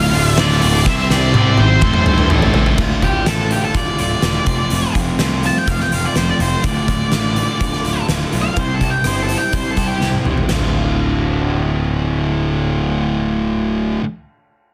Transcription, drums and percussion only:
0.13 open hi-hat medium
0.38 snare loud
0.61 open hi-hat medium
0.86 kick loud
0.86 snare medium
1.10 snare medium
1.34 high tom medium
1.57 high tom medium
1.81 kick loud
1.81 mid tom medium
1.93 mid tom medium
2.06 mid tom loud
2.18 mid tom medium
2.30 mid tom loud
2.42 floor tom loud
2.54 floor tom loud
2.66 floor tom loud
2.78 kick loud
2.78 crash medium
3.02 kick medium
3.02 closed hi-hat medium
3.26 snare loud
3.26 closed hi-hat medium
3.51 closed hi-hat medium
3.74 kick loud
3.74 closed hi-hat medium
3.98 closed hi-hat medium
4.22 snare loud
4.22 closed hi-hat medium
4.46 kick medium
4.46 closed hi-hat medium
4.70 closed hi-hat medium
4.95 kick medium
4.95 closed hi-hat medium
5.19 snare loud
5.19 closed hi-hat medium
5.43 closed hi-hat medium
5.67 kick medium
5.67 closed hi-hat medium
5.80 snare soft
5.92 closed hi-hat medium
6.16 snare medium
6.16 closed hi-hat medium
6.40 closed hi-hat medium
6.64 kick loud
6.64 closed hi-hat medium
6.88 kick medium
6.88 closed hi-hat medium
7.12 snare loud
7.12 closed hi-hat medium
7.36 closed hi-hat soft
7.60 kick medium
7.60 closed hi-hat medium
7.73 snare soft
7.85 closed hi-hat soft
8.09 snare medium
8.09 closed hi-hat medium
8.33 closed hi-hat medium
8.56 kick loud
8.56 closed hi-hat medium
8.81 kick medium
8.81 closed hi-hat medium
9.04 cross-stick medium
9.04 closed hi-hat medium
9.29 closed hi-hat medium
9.53 kick medium
9.53 closed hi-hat medium
9.77 kick medium
9.77 closed hi-hat medium
10.01 snare soft
10.13 high tom soft
10.25 mid tom medium
10.38 floor tom medium
10.49 snare medium
10.49 floor tom medium
10.49 crash medium

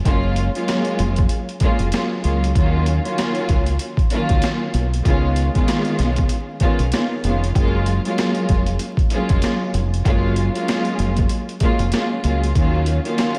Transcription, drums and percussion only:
0.05 kick loud
0.05 closed hi-hat medium
0.36 closed hi-hat medium
0.55 closed hi-hat medium
0.68 cross-stick medium
0.68 snare loud
0.68 closed hi-hat medium
0.85 closed hi-hat soft
0.99 closed hi-hat medium
1.16 kick medium
1.16 closed hi-hat medium
1.29 closed hi-hat loud
1.49 closed hi-hat soft
1.60 kick medium
1.60 closed hi-hat medium
1.79 closed hi-hat medium
1.92 cross-stick medium
1.92 snare loud
1.92 closed hi-hat medium
2.24 closed hi-hat medium
2.44 closed hi-hat medium
2.55 kick loud
2.55 closed hi-hat medium
2.86 closed hi-hat medium
3.05 closed hi-hat medium
3.18 cross-stick medium
3.18 snare loud
3.18 closed hi-hat medium
3.35 closed hi-hat soft
3.49 kick medium
3.49 closed hi-hat medium
3.66 closed hi-hat medium
3.79 closed hi-hat loud
3.97 kick medium
3.97 closed hi-hat soft
4.10 closed hi-hat medium
4.29 kick loud
4.29 closed hi-hat medium
4.42 cross-stick medium
4.42 snare loud
4.42 closed hi-hat medium
4.74 closed hi-hat medium
4.94 closed hi-hat medium
5.05 kick loud
5.05 closed hi-hat medium
5.36 closed hi-hat medium
5.55 kick medium
5.55 closed hi-hat medium
5.68 cross-stick medium
5.68 snare loud
5.68 closed hi-hat medium
5.85 closed hi-hat soft
5.99 snare soft
5.99 closed hi-hat medium
6.16 kick medium
6.16 closed hi-hat medium
6.29 closed hi-hat loud
6.60 kick medium
6.60 closed hi-hat medium
6.79 closed hi-hat medium
6.92 cross-stick medium
6.92 snare loud
6.92 closed hi-hat medium
7.24 closed hi-hat medium
7.44 closed hi-hat medium
7.55 kick loud
7.55 closed hi-hat medium
7.86 closed hi-hat medium
8.05 closed hi-hat medium
8.18 cross-stick medium
8.18 snare loud
8.18 closed hi-hat medium
8.35 closed hi-hat soft
8.49 kick medium
8.49 closed hi-hat medium
8.66 closed hi-hat medium
8.79 closed hi-hat loud
8.97 kick loud
8.97 closed hi-hat soft
9.10 closed hi-hat medium
9.29 kick loud
9.29 closed hi-hat medium
9.42 cross-stick medium
9.42 snare loud
9.42 closed hi-hat medium
9.74 closed hi-hat medium
9.94 closed hi-hat medium
10.05 kick loud
10.05 closed hi-hat medium
10.36 closed hi-hat medium
10.55 closed hi-hat medium
10.68 cross-stick medium
10.68 snare loud
10.68 closed hi-hat medium
10.85 closed hi-hat soft
10.99 closed hi-hat medium
11.17 kick medium
11.17 closed hi-hat medium
11.29 closed hi-hat loud
11.49 closed hi-hat soft
11.60 kick medium
11.60 closed hi-hat medium
11.79 closed hi-hat medium
11.92 cross-stick medium
11.92 snare loud
11.92 closed hi-hat medium
12.24 closed hi-hat medium
12.44 closed hi-hat medium
12.55 kick loud
12.55 closed hi-hat medium
12.86 closed hi-hat medium
13.05 closed hi-hat medium
13.18 cross-stick medium
13.18 snare loud
13.18 closed hi-hat medium
13.35 closed hi-hat soft

